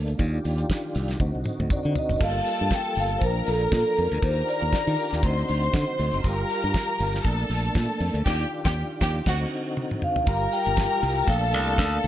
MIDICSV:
0, 0, Header, 1, 6, 480
1, 0, Start_track
1, 0, Key_signature, -2, "minor"
1, 0, Tempo, 504202
1, 181, Time_signature, 4, 2, 24, 8
1, 11495, End_track
2, 0, Start_track
2, 0, Title_t, "String section"
2, 0, Program_c, 0, 48
2, 2110, Note_on_c, 0, 69, 77
2, 2112, Note_on_c, 0, 81, 105
2, 3046, Note_off_c, 0, 69, 0
2, 3047, Note_off_c, 0, 81, 0
2, 3067, Note_on_c, 0, 82, 81
2, 3068, Note_on_c, 0, 70, 80
2, 4004, Note_off_c, 0, 82, 0
2, 4005, Note_off_c, 0, 70, 0
2, 4032, Note_on_c, 0, 82, 98
2, 4035, Note_on_c, 0, 70, 92
2, 4967, Note_off_c, 0, 82, 0
2, 4968, Note_off_c, 0, 70, 0
2, 4989, Note_on_c, 0, 72, 79
2, 4990, Note_on_c, 0, 84, 86
2, 5925, Note_off_c, 0, 72, 0
2, 5926, Note_off_c, 0, 84, 0
2, 5932, Note_on_c, 0, 70, 94
2, 5933, Note_on_c, 0, 82, 103
2, 6876, Note_off_c, 0, 70, 0
2, 6876, Note_off_c, 0, 82, 0
2, 6895, Note_on_c, 0, 81, 88
2, 6897, Note_on_c, 0, 69, 75
2, 7837, Note_off_c, 0, 81, 0
2, 7838, Note_off_c, 0, 69, 0
2, 7855, Note_on_c, 0, 67, 111
2, 7856, Note_on_c, 0, 79, 106
2, 8024, Note_off_c, 0, 67, 0
2, 8025, Note_off_c, 0, 79, 0
2, 8233, Note_on_c, 0, 79, 103
2, 8237, Note_on_c, 0, 67, 92
2, 8391, Note_off_c, 0, 79, 0
2, 8393, Note_off_c, 0, 67, 0
2, 8582, Note_on_c, 0, 67, 91
2, 8583, Note_on_c, 0, 79, 96
2, 8749, Note_off_c, 0, 67, 0
2, 8749, Note_off_c, 0, 79, 0
2, 8819, Note_on_c, 0, 78, 89
2, 8820, Note_on_c, 0, 66, 95
2, 8986, Note_off_c, 0, 78, 0
2, 8987, Note_off_c, 0, 66, 0
2, 9784, Note_on_c, 0, 70, 92
2, 9786, Note_on_c, 0, 82, 99
2, 10721, Note_off_c, 0, 70, 0
2, 10722, Note_off_c, 0, 82, 0
2, 10738, Note_on_c, 0, 69, 79
2, 10739, Note_on_c, 0, 81, 98
2, 11495, Note_off_c, 0, 69, 0
2, 11495, Note_off_c, 0, 81, 0
2, 11495, End_track
3, 0, Start_track
3, 0, Title_t, "Vibraphone"
3, 0, Program_c, 1, 11
3, 1642, Note_on_c, 1, 74, 91
3, 1878, Note_off_c, 1, 74, 0
3, 1891, Note_on_c, 1, 75, 81
3, 2122, Note_off_c, 1, 75, 0
3, 2130, Note_on_c, 1, 77, 94
3, 2609, Note_off_c, 1, 77, 0
3, 2614, Note_on_c, 1, 79, 94
3, 2843, Note_off_c, 1, 79, 0
3, 2853, Note_on_c, 1, 77, 94
3, 3029, Note_off_c, 1, 77, 0
3, 3030, Note_on_c, 1, 72, 65
3, 3071, Note_off_c, 1, 72, 0
3, 3077, Note_on_c, 1, 70, 91
3, 3315, Note_off_c, 1, 70, 0
3, 3322, Note_on_c, 1, 69, 82
3, 3545, Note_off_c, 1, 69, 0
3, 3557, Note_on_c, 1, 69, 92
3, 3772, Note_off_c, 1, 69, 0
3, 3797, Note_on_c, 1, 70, 79
3, 4033, Note_on_c, 1, 72, 94
3, 4035, Note_off_c, 1, 70, 0
3, 4273, Note_off_c, 1, 72, 0
3, 4277, Note_on_c, 1, 74, 94
3, 4715, Note_off_c, 1, 74, 0
3, 9558, Note_on_c, 1, 77, 97
3, 10025, Note_on_c, 1, 79, 114
3, 10041, Note_off_c, 1, 77, 0
3, 10257, Note_off_c, 1, 79, 0
3, 10268, Note_on_c, 1, 79, 110
3, 10742, Note_on_c, 1, 77, 97
3, 10757, Note_off_c, 1, 79, 0
3, 11495, Note_off_c, 1, 77, 0
3, 11495, End_track
4, 0, Start_track
4, 0, Title_t, "Tonewheel organ"
4, 0, Program_c, 2, 16
4, 0, Note_on_c, 2, 57, 70
4, 0, Note_on_c, 2, 58, 60
4, 0, Note_on_c, 2, 62, 70
4, 171, Note_off_c, 2, 57, 0
4, 173, Note_off_c, 2, 58, 0
4, 174, Note_on_c, 2, 65, 59
4, 179, Note_on_c, 2, 67, 71
4, 180, Note_on_c, 2, 51, 65
4, 1121, Note_off_c, 2, 62, 0
4, 1128, Note_off_c, 2, 65, 0
4, 1130, Note_off_c, 2, 51, 0
4, 1130, Note_off_c, 2, 67, 0
4, 1145, Note_on_c, 2, 63, 61
4, 1149, Note_on_c, 2, 50, 62
4, 1149, Note_on_c, 2, 60, 60
4, 1149, Note_on_c, 2, 66, 74
4, 2093, Note_off_c, 2, 63, 0
4, 2095, Note_off_c, 2, 50, 0
4, 2095, Note_off_c, 2, 60, 0
4, 2095, Note_off_c, 2, 66, 0
4, 2102, Note_on_c, 2, 69, 61
4, 2105, Note_on_c, 2, 65, 59
4, 2108, Note_on_c, 2, 55, 59
4, 2109, Note_on_c, 2, 58, 72
4, 3051, Note_off_c, 2, 58, 0
4, 3051, Note_off_c, 2, 69, 0
4, 3053, Note_off_c, 2, 65, 0
4, 3054, Note_off_c, 2, 55, 0
4, 3062, Note_on_c, 2, 53, 64
4, 3063, Note_on_c, 2, 58, 61
4, 3068, Note_on_c, 2, 62, 70
4, 4011, Note_off_c, 2, 53, 0
4, 4011, Note_off_c, 2, 58, 0
4, 4014, Note_off_c, 2, 62, 0
4, 4026, Note_on_c, 2, 51, 65
4, 4027, Note_on_c, 2, 67, 68
4, 4029, Note_on_c, 2, 62, 63
4, 4030, Note_on_c, 2, 65, 56
4, 4973, Note_off_c, 2, 51, 0
4, 4974, Note_off_c, 2, 67, 0
4, 4975, Note_off_c, 2, 62, 0
4, 4975, Note_off_c, 2, 65, 0
4, 4986, Note_on_c, 2, 60, 63
4, 4987, Note_on_c, 2, 66, 73
4, 4988, Note_on_c, 2, 50, 66
4, 4993, Note_on_c, 2, 63, 63
4, 5933, Note_off_c, 2, 60, 0
4, 5933, Note_off_c, 2, 66, 0
4, 5934, Note_off_c, 2, 50, 0
4, 5936, Note_off_c, 2, 63, 0
4, 5951, Note_on_c, 2, 65, 63
4, 5951, Note_on_c, 2, 67, 61
4, 5952, Note_on_c, 2, 55, 68
4, 5952, Note_on_c, 2, 70, 65
4, 6895, Note_off_c, 2, 65, 0
4, 6895, Note_off_c, 2, 67, 0
4, 6896, Note_off_c, 2, 55, 0
4, 6896, Note_off_c, 2, 70, 0
4, 6900, Note_on_c, 2, 58, 64
4, 6906, Note_on_c, 2, 57, 77
4, 6907, Note_on_c, 2, 62, 81
4, 7850, Note_off_c, 2, 58, 0
4, 7853, Note_off_c, 2, 57, 0
4, 7861, Note_on_c, 2, 51, 68
4, 7864, Note_on_c, 2, 65, 57
4, 7868, Note_on_c, 2, 67, 73
4, 8803, Note_off_c, 2, 62, 0
4, 8810, Note_off_c, 2, 51, 0
4, 8811, Note_off_c, 2, 65, 0
4, 8813, Note_off_c, 2, 67, 0
4, 8822, Note_on_c, 2, 66, 79
4, 8823, Note_on_c, 2, 60, 63
4, 8824, Note_on_c, 2, 63, 65
4, 8826, Note_on_c, 2, 50, 66
4, 9770, Note_off_c, 2, 60, 0
4, 9770, Note_off_c, 2, 66, 0
4, 9771, Note_off_c, 2, 63, 0
4, 9772, Note_off_c, 2, 50, 0
4, 9787, Note_on_c, 2, 67, 67
4, 9789, Note_on_c, 2, 65, 67
4, 9791, Note_on_c, 2, 70, 82
4, 9793, Note_on_c, 2, 55, 74
4, 10732, Note_off_c, 2, 67, 0
4, 10733, Note_off_c, 2, 65, 0
4, 10734, Note_off_c, 2, 70, 0
4, 10735, Note_off_c, 2, 55, 0
4, 10745, Note_on_c, 2, 57, 82
4, 10746, Note_on_c, 2, 62, 81
4, 10747, Note_on_c, 2, 58, 75
4, 11495, Note_off_c, 2, 57, 0
4, 11495, Note_off_c, 2, 58, 0
4, 11495, Note_off_c, 2, 62, 0
4, 11495, End_track
5, 0, Start_track
5, 0, Title_t, "Fingered electric bass"
5, 0, Program_c, 3, 33
5, 0, Note_on_c, 3, 38, 75
5, 125, Note_off_c, 3, 38, 0
5, 186, Note_on_c, 3, 39, 116
5, 361, Note_off_c, 3, 39, 0
5, 430, Note_on_c, 3, 39, 97
5, 603, Note_off_c, 3, 39, 0
5, 911, Note_on_c, 3, 36, 95
5, 1084, Note_off_c, 3, 36, 0
5, 1142, Note_on_c, 3, 38, 98
5, 1240, Note_off_c, 3, 38, 0
5, 1282, Note_on_c, 3, 36, 63
5, 1357, Note_off_c, 3, 36, 0
5, 1521, Note_on_c, 3, 38, 92
5, 1596, Note_off_c, 3, 38, 0
5, 1763, Note_on_c, 3, 50, 89
5, 1837, Note_off_c, 3, 50, 0
5, 2005, Note_on_c, 3, 30, 90
5, 2079, Note_off_c, 3, 30, 0
5, 2101, Note_on_c, 3, 31, 99
5, 2277, Note_off_c, 3, 31, 0
5, 2486, Note_on_c, 3, 43, 76
5, 2559, Note_off_c, 3, 43, 0
5, 2827, Note_on_c, 3, 31, 92
5, 3001, Note_off_c, 3, 31, 0
5, 3061, Note_on_c, 3, 34, 91
5, 3238, Note_off_c, 3, 34, 0
5, 3311, Note_on_c, 3, 34, 95
5, 3483, Note_off_c, 3, 34, 0
5, 3544, Note_on_c, 3, 46, 83
5, 3641, Note_off_c, 3, 46, 0
5, 3793, Note_on_c, 3, 41, 80
5, 3887, Note_off_c, 3, 41, 0
5, 3919, Note_on_c, 3, 38, 91
5, 3995, Note_off_c, 3, 38, 0
5, 4023, Note_on_c, 3, 39, 97
5, 4199, Note_off_c, 3, 39, 0
5, 4400, Note_on_c, 3, 39, 81
5, 4476, Note_off_c, 3, 39, 0
5, 4639, Note_on_c, 3, 51, 94
5, 4715, Note_off_c, 3, 51, 0
5, 4881, Note_on_c, 3, 39, 77
5, 4956, Note_off_c, 3, 39, 0
5, 4981, Note_on_c, 3, 38, 101
5, 5157, Note_off_c, 3, 38, 0
5, 5232, Note_on_c, 3, 38, 82
5, 5404, Note_off_c, 3, 38, 0
5, 5463, Note_on_c, 3, 50, 91
5, 5561, Note_off_c, 3, 50, 0
5, 5707, Note_on_c, 3, 38, 83
5, 5803, Note_off_c, 3, 38, 0
5, 5844, Note_on_c, 3, 30, 94
5, 5918, Note_off_c, 3, 30, 0
5, 5944, Note_on_c, 3, 31, 104
5, 6119, Note_off_c, 3, 31, 0
5, 6320, Note_on_c, 3, 43, 81
5, 6395, Note_off_c, 3, 43, 0
5, 6666, Note_on_c, 3, 31, 98
5, 6840, Note_off_c, 3, 31, 0
5, 6901, Note_on_c, 3, 34, 103
5, 7077, Note_off_c, 3, 34, 0
5, 7138, Note_on_c, 3, 34, 85
5, 7315, Note_off_c, 3, 34, 0
5, 7382, Note_on_c, 3, 46, 89
5, 7479, Note_off_c, 3, 46, 0
5, 7620, Note_on_c, 3, 41, 85
5, 7718, Note_off_c, 3, 41, 0
5, 7749, Note_on_c, 3, 38, 99
5, 7828, Note_off_c, 3, 38, 0
5, 7864, Note_on_c, 3, 39, 105
5, 8030, Note_off_c, 3, 39, 0
5, 8240, Note_on_c, 3, 39, 94
5, 8395, Note_off_c, 3, 39, 0
5, 8582, Note_on_c, 3, 39, 96
5, 8748, Note_off_c, 3, 39, 0
5, 8820, Note_on_c, 3, 38, 92
5, 8987, Note_off_c, 3, 38, 0
5, 9779, Note_on_c, 3, 31, 109
5, 9955, Note_off_c, 3, 31, 0
5, 10155, Note_on_c, 3, 31, 93
5, 10330, Note_off_c, 3, 31, 0
5, 10499, Note_on_c, 3, 36, 104
5, 10675, Note_off_c, 3, 36, 0
5, 10737, Note_on_c, 3, 34, 115
5, 10985, Note_off_c, 3, 34, 0
5, 10985, Note_on_c, 3, 36, 103
5, 11220, Note_off_c, 3, 36, 0
5, 11220, Note_on_c, 3, 38, 90
5, 11395, Note_off_c, 3, 38, 0
5, 11462, Note_on_c, 3, 38, 96
5, 11495, Note_off_c, 3, 38, 0
5, 11495, End_track
6, 0, Start_track
6, 0, Title_t, "Drums"
6, 74, Note_on_c, 9, 42, 50
6, 89, Note_on_c, 9, 54, 32
6, 169, Note_off_c, 9, 42, 0
6, 180, Note_on_c, 9, 42, 58
6, 183, Note_on_c, 9, 36, 101
6, 184, Note_off_c, 9, 54, 0
6, 184, Note_on_c, 9, 54, 58
6, 276, Note_off_c, 9, 42, 0
6, 279, Note_off_c, 9, 36, 0
6, 280, Note_off_c, 9, 54, 0
6, 423, Note_on_c, 9, 54, 64
6, 427, Note_on_c, 9, 46, 62
6, 518, Note_off_c, 9, 54, 0
6, 523, Note_off_c, 9, 46, 0
6, 554, Note_on_c, 9, 42, 53
6, 561, Note_on_c, 9, 54, 37
6, 649, Note_off_c, 9, 42, 0
6, 656, Note_off_c, 9, 54, 0
6, 663, Note_on_c, 9, 36, 92
6, 663, Note_on_c, 9, 54, 88
6, 664, Note_on_c, 9, 42, 58
6, 675, Note_on_c, 9, 38, 98
6, 758, Note_off_c, 9, 36, 0
6, 759, Note_off_c, 9, 42, 0
6, 759, Note_off_c, 9, 54, 0
6, 770, Note_off_c, 9, 38, 0
6, 902, Note_on_c, 9, 46, 66
6, 902, Note_on_c, 9, 54, 61
6, 997, Note_off_c, 9, 54, 0
6, 998, Note_off_c, 9, 46, 0
6, 1029, Note_on_c, 9, 42, 51
6, 1035, Note_on_c, 9, 54, 34
6, 1046, Note_on_c, 9, 38, 34
6, 1124, Note_off_c, 9, 42, 0
6, 1131, Note_off_c, 9, 54, 0
6, 1137, Note_on_c, 9, 54, 51
6, 1141, Note_on_c, 9, 36, 102
6, 1142, Note_off_c, 9, 38, 0
6, 1143, Note_on_c, 9, 48, 54
6, 1232, Note_off_c, 9, 54, 0
6, 1237, Note_off_c, 9, 36, 0
6, 1238, Note_off_c, 9, 48, 0
6, 1369, Note_on_c, 9, 54, 57
6, 1385, Note_on_c, 9, 47, 74
6, 1464, Note_off_c, 9, 54, 0
6, 1481, Note_off_c, 9, 47, 0
6, 1523, Note_on_c, 9, 47, 57
6, 1618, Note_off_c, 9, 47, 0
6, 1618, Note_on_c, 9, 54, 98
6, 1621, Note_on_c, 9, 36, 106
6, 1626, Note_on_c, 9, 45, 84
6, 1714, Note_off_c, 9, 54, 0
6, 1717, Note_off_c, 9, 36, 0
6, 1721, Note_off_c, 9, 45, 0
6, 1860, Note_on_c, 9, 54, 48
6, 1861, Note_on_c, 9, 43, 93
6, 1955, Note_off_c, 9, 54, 0
6, 1956, Note_off_c, 9, 43, 0
6, 1993, Note_on_c, 9, 43, 86
6, 2001, Note_on_c, 9, 54, 35
6, 2088, Note_off_c, 9, 43, 0
6, 2096, Note_off_c, 9, 54, 0
6, 2098, Note_on_c, 9, 49, 86
6, 2099, Note_on_c, 9, 54, 58
6, 2101, Note_on_c, 9, 36, 118
6, 2193, Note_off_c, 9, 49, 0
6, 2194, Note_off_c, 9, 54, 0
6, 2196, Note_off_c, 9, 36, 0
6, 2344, Note_on_c, 9, 46, 60
6, 2344, Note_on_c, 9, 54, 63
6, 2439, Note_off_c, 9, 46, 0
6, 2439, Note_off_c, 9, 54, 0
6, 2465, Note_on_c, 9, 42, 47
6, 2560, Note_off_c, 9, 42, 0
6, 2577, Note_on_c, 9, 42, 66
6, 2578, Note_on_c, 9, 54, 79
6, 2579, Note_on_c, 9, 36, 105
6, 2588, Note_on_c, 9, 38, 90
6, 2672, Note_off_c, 9, 42, 0
6, 2673, Note_off_c, 9, 54, 0
6, 2674, Note_off_c, 9, 36, 0
6, 2683, Note_off_c, 9, 38, 0
6, 2813, Note_on_c, 9, 46, 66
6, 2831, Note_on_c, 9, 54, 62
6, 2908, Note_off_c, 9, 46, 0
6, 2926, Note_off_c, 9, 54, 0
6, 2948, Note_on_c, 9, 42, 49
6, 3043, Note_off_c, 9, 42, 0
6, 3061, Note_on_c, 9, 36, 102
6, 3063, Note_on_c, 9, 42, 61
6, 3065, Note_on_c, 9, 54, 55
6, 3156, Note_off_c, 9, 36, 0
6, 3158, Note_off_c, 9, 42, 0
6, 3160, Note_off_c, 9, 54, 0
6, 3300, Note_on_c, 9, 46, 72
6, 3300, Note_on_c, 9, 54, 56
6, 3395, Note_off_c, 9, 46, 0
6, 3395, Note_off_c, 9, 54, 0
6, 3438, Note_on_c, 9, 42, 46
6, 3533, Note_off_c, 9, 42, 0
6, 3541, Note_on_c, 9, 36, 117
6, 3544, Note_on_c, 9, 42, 85
6, 3545, Note_on_c, 9, 54, 99
6, 3549, Note_on_c, 9, 38, 123
6, 3636, Note_off_c, 9, 36, 0
6, 3639, Note_off_c, 9, 42, 0
6, 3641, Note_off_c, 9, 54, 0
6, 3644, Note_off_c, 9, 38, 0
6, 3776, Note_on_c, 9, 46, 69
6, 3786, Note_on_c, 9, 54, 52
6, 3872, Note_off_c, 9, 46, 0
6, 3881, Note_off_c, 9, 54, 0
6, 3917, Note_on_c, 9, 42, 49
6, 4012, Note_off_c, 9, 42, 0
6, 4022, Note_on_c, 9, 36, 119
6, 4022, Note_on_c, 9, 42, 63
6, 4024, Note_on_c, 9, 54, 58
6, 4117, Note_off_c, 9, 36, 0
6, 4117, Note_off_c, 9, 42, 0
6, 4119, Note_off_c, 9, 54, 0
6, 4267, Note_on_c, 9, 46, 69
6, 4269, Note_on_c, 9, 54, 62
6, 4363, Note_off_c, 9, 46, 0
6, 4364, Note_off_c, 9, 54, 0
6, 4395, Note_on_c, 9, 42, 53
6, 4490, Note_off_c, 9, 42, 0
6, 4498, Note_on_c, 9, 42, 62
6, 4500, Note_on_c, 9, 36, 98
6, 4505, Note_on_c, 9, 54, 89
6, 4510, Note_on_c, 9, 38, 85
6, 4593, Note_off_c, 9, 42, 0
6, 4595, Note_off_c, 9, 36, 0
6, 4600, Note_off_c, 9, 54, 0
6, 4605, Note_off_c, 9, 38, 0
6, 4732, Note_on_c, 9, 46, 67
6, 4743, Note_on_c, 9, 54, 60
6, 4828, Note_off_c, 9, 46, 0
6, 4838, Note_off_c, 9, 54, 0
6, 4861, Note_on_c, 9, 42, 50
6, 4879, Note_on_c, 9, 38, 31
6, 4881, Note_on_c, 9, 54, 35
6, 4957, Note_off_c, 9, 42, 0
6, 4974, Note_off_c, 9, 38, 0
6, 4976, Note_off_c, 9, 54, 0
6, 4979, Note_on_c, 9, 36, 103
6, 4980, Note_on_c, 9, 54, 52
6, 4981, Note_on_c, 9, 42, 68
6, 5074, Note_off_c, 9, 36, 0
6, 5075, Note_off_c, 9, 54, 0
6, 5076, Note_off_c, 9, 42, 0
6, 5118, Note_on_c, 9, 54, 35
6, 5213, Note_off_c, 9, 54, 0
6, 5217, Note_on_c, 9, 54, 60
6, 5221, Note_on_c, 9, 46, 74
6, 5312, Note_off_c, 9, 54, 0
6, 5316, Note_off_c, 9, 46, 0
6, 5362, Note_on_c, 9, 42, 43
6, 5457, Note_off_c, 9, 42, 0
6, 5461, Note_on_c, 9, 36, 127
6, 5462, Note_on_c, 9, 42, 78
6, 5463, Note_on_c, 9, 54, 101
6, 5467, Note_on_c, 9, 38, 125
6, 5556, Note_off_c, 9, 36, 0
6, 5557, Note_off_c, 9, 42, 0
6, 5558, Note_off_c, 9, 54, 0
6, 5562, Note_off_c, 9, 38, 0
6, 5696, Note_on_c, 9, 46, 61
6, 5701, Note_on_c, 9, 54, 52
6, 5791, Note_off_c, 9, 46, 0
6, 5797, Note_off_c, 9, 54, 0
6, 5836, Note_on_c, 9, 42, 53
6, 5840, Note_on_c, 9, 54, 34
6, 5931, Note_off_c, 9, 42, 0
6, 5935, Note_off_c, 9, 54, 0
6, 5939, Note_on_c, 9, 54, 63
6, 5943, Note_on_c, 9, 36, 109
6, 5943, Note_on_c, 9, 42, 54
6, 6035, Note_off_c, 9, 54, 0
6, 6038, Note_off_c, 9, 36, 0
6, 6038, Note_off_c, 9, 42, 0
6, 6180, Note_on_c, 9, 54, 64
6, 6187, Note_on_c, 9, 46, 64
6, 6275, Note_off_c, 9, 54, 0
6, 6282, Note_off_c, 9, 46, 0
6, 6315, Note_on_c, 9, 42, 52
6, 6410, Note_off_c, 9, 42, 0
6, 6416, Note_on_c, 9, 54, 80
6, 6420, Note_on_c, 9, 36, 100
6, 6420, Note_on_c, 9, 42, 64
6, 6432, Note_on_c, 9, 38, 88
6, 6511, Note_off_c, 9, 54, 0
6, 6515, Note_off_c, 9, 36, 0
6, 6515, Note_off_c, 9, 42, 0
6, 6527, Note_off_c, 9, 38, 0
6, 6656, Note_on_c, 9, 46, 72
6, 6660, Note_on_c, 9, 54, 57
6, 6751, Note_off_c, 9, 46, 0
6, 6756, Note_off_c, 9, 54, 0
6, 6787, Note_on_c, 9, 42, 55
6, 6796, Note_on_c, 9, 54, 39
6, 6805, Note_on_c, 9, 38, 37
6, 6882, Note_off_c, 9, 42, 0
6, 6891, Note_off_c, 9, 54, 0
6, 6897, Note_on_c, 9, 54, 50
6, 6898, Note_on_c, 9, 36, 101
6, 6900, Note_off_c, 9, 38, 0
6, 6903, Note_on_c, 9, 42, 68
6, 6993, Note_off_c, 9, 54, 0
6, 6994, Note_off_c, 9, 36, 0
6, 6998, Note_off_c, 9, 42, 0
6, 7039, Note_on_c, 9, 54, 38
6, 7134, Note_off_c, 9, 54, 0
6, 7135, Note_on_c, 9, 54, 54
6, 7141, Note_on_c, 9, 46, 76
6, 7230, Note_off_c, 9, 54, 0
6, 7236, Note_off_c, 9, 46, 0
6, 7283, Note_on_c, 9, 42, 42
6, 7378, Note_off_c, 9, 42, 0
6, 7380, Note_on_c, 9, 36, 121
6, 7381, Note_on_c, 9, 54, 95
6, 7387, Note_on_c, 9, 42, 78
6, 7392, Note_on_c, 9, 38, 120
6, 7475, Note_off_c, 9, 36, 0
6, 7476, Note_off_c, 9, 54, 0
6, 7482, Note_off_c, 9, 42, 0
6, 7487, Note_off_c, 9, 38, 0
6, 7619, Note_on_c, 9, 54, 52
6, 7621, Note_on_c, 9, 46, 65
6, 7714, Note_off_c, 9, 54, 0
6, 7716, Note_off_c, 9, 46, 0
6, 7758, Note_on_c, 9, 42, 51
6, 7853, Note_off_c, 9, 42, 0
6, 7862, Note_on_c, 9, 36, 109
6, 7870, Note_on_c, 9, 49, 81
6, 7875, Note_on_c, 9, 38, 105
6, 7957, Note_off_c, 9, 36, 0
6, 7965, Note_off_c, 9, 49, 0
6, 7971, Note_off_c, 9, 38, 0
6, 8236, Note_on_c, 9, 36, 123
6, 8247, Note_on_c, 9, 38, 114
6, 8331, Note_off_c, 9, 36, 0
6, 8342, Note_off_c, 9, 38, 0
6, 8579, Note_on_c, 9, 36, 118
6, 8585, Note_on_c, 9, 38, 107
6, 8674, Note_off_c, 9, 36, 0
6, 8680, Note_off_c, 9, 38, 0
6, 8818, Note_on_c, 9, 36, 111
6, 8818, Note_on_c, 9, 49, 92
6, 8824, Note_on_c, 9, 38, 117
6, 8913, Note_off_c, 9, 36, 0
6, 8914, Note_off_c, 9, 49, 0
6, 8919, Note_off_c, 9, 38, 0
6, 9302, Note_on_c, 9, 48, 62
6, 9397, Note_off_c, 9, 48, 0
6, 9437, Note_on_c, 9, 47, 60
6, 9532, Note_off_c, 9, 47, 0
6, 9540, Note_on_c, 9, 45, 83
6, 9635, Note_off_c, 9, 45, 0
6, 9672, Note_on_c, 9, 43, 89
6, 9768, Note_off_c, 9, 43, 0
6, 9774, Note_on_c, 9, 42, 63
6, 9775, Note_on_c, 9, 54, 64
6, 9777, Note_on_c, 9, 36, 113
6, 9870, Note_off_c, 9, 42, 0
6, 9870, Note_off_c, 9, 54, 0
6, 9873, Note_off_c, 9, 36, 0
6, 10016, Note_on_c, 9, 54, 68
6, 10022, Note_on_c, 9, 46, 64
6, 10112, Note_off_c, 9, 54, 0
6, 10117, Note_off_c, 9, 46, 0
6, 10149, Note_on_c, 9, 42, 60
6, 10158, Note_on_c, 9, 54, 43
6, 10245, Note_off_c, 9, 42, 0
6, 10250, Note_on_c, 9, 42, 70
6, 10253, Note_off_c, 9, 54, 0
6, 10256, Note_on_c, 9, 36, 109
6, 10256, Note_on_c, 9, 54, 105
6, 10262, Note_on_c, 9, 38, 98
6, 10345, Note_off_c, 9, 42, 0
6, 10351, Note_off_c, 9, 36, 0
6, 10351, Note_off_c, 9, 54, 0
6, 10357, Note_off_c, 9, 38, 0
6, 10490, Note_on_c, 9, 46, 73
6, 10507, Note_on_c, 9, 54, 67
6, 10585, Note_off_c, 9, 46, 0
6, 10602, Note_off_c, 9, 54, 0
6, 10619, Note_on_c, 9, 42, 54
6, 10642, Note_on_c, 9, 54, 39
6, 10715, Note_off_c, 9, 42, 0
6, 10733, Note_on_c, 9, 42, 64
6, 10735, Note_on_c, 9, 36, 104
6, 10737, Note_off_c, 9, 54, 0
6, 10737, Note_on_c, 9, 54, 59
6, 10828, Note_off_c, 9, 42, 0
6, 10830, Note_off_c, 9, 36, 0
6, 10832, Note_off_c, 9, 54, 0
6, 10880, Note_on_c, 9, 54, 40
6, 10973, Note_on_c, 9, 46, 84
6, 10975, Note_off_c, 9, 54, 0
6, 10975, Note_on_c, 9, 54, 58
6, 11068, Note_off_c, 9, 46, 0
6, 11071, Note_off_c, 9, 54, 0
6, 11117, Note_on_c, 9, 42, 51
6, 11212, Note_off_c, 9, 42, 0
6, 11216, Note_on_c, 9, 36, 127
6, 11220, Note_on_c, 9, 42, 85
6, 11220, Note_on_c, 9, 54, 112
6, 11225, Note_on_c, 9, 38, 126
6, 11312, Note_off_c, 9, 36, 0
6, 11315, Note_off_c, 9, 42, 0
6, 11315, Note_off_c, 9, 54, 0
6, 11320, Note_off_c, 9, 38, 0
6, 11454, Note_on_c, 9, 46, 74
6, 11457, Note_on_c, 9, 54, 54
6, 11495, Note_off_c, 9, 46, 0
6, 11495, Note_off_c, 9, 54, 0
6, 11495, End_track
0, 0, End_of_file